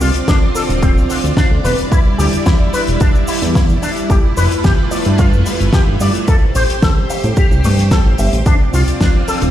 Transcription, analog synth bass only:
0.01 C2
0.15 D2
0.28 D2
0.69 D1
0.97 C2
1.24 D2
1.51 D2
1.64 E1
2.19 D2
2.34 E2
2.46 E2
2.88 E1
3.42 E2
4.10 G1
4.37 F1
4.51 G1
4.64 G1
5.06 G2
5.33 F2
5.60 G1
5.88 G1
6.01 G2
6.55 A1
6.69 A1
6.83 A1
7.24 A2
7.51 C2
7.65 G2
8.06 A1
8.19 G1
8.33 A1
8.46 D2
8.73 C2
8.88 D2
9.01 D2
9.42 D1

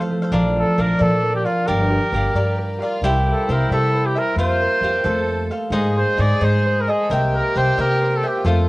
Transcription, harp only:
Already playing: F3 C4
0.10 A3
0.33 F3
0.56 F4
0.78 A#4
1.00 F3
1.23 A#4
1.45 D5
1.67 G3
1.90 G4
2.12 A#4
2.34 G3
2.58 A#4
2.80 F5
3.03 G3
3.27 G4
3.48 C5
3.70 G3
3.94 C5
4.15 E5
4.37 A#3
4.62 A#4
4.83 C5
5.05 A3
5.29 C5
5.52 F5
5.73 G#3
5.97 G#4
6.20 C5
6.42 G#3
6.66 C5
6.89 D#5
7.11 A#3
7.35 A#4
7.56 C5
7.79 A#3
8.02 C5
8.24 E5
8.45 A3

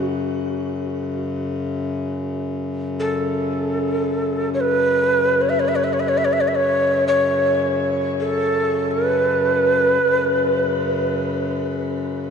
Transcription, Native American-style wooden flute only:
3.00 A4
4.54 C#5
4.60 B4
5.41 C#5
5.49 E5
5.60 C#5
5.68 E5
5.75 C#5
5.84 E5
5.93 C#5
6.00 E5
6.08 C#5
6.18 E5
6.25 C#5
6.33 E5
6.41 C#5
6.48 E5
6.55 C#5
7.07 C#5
8.20 A4
8.91 B4

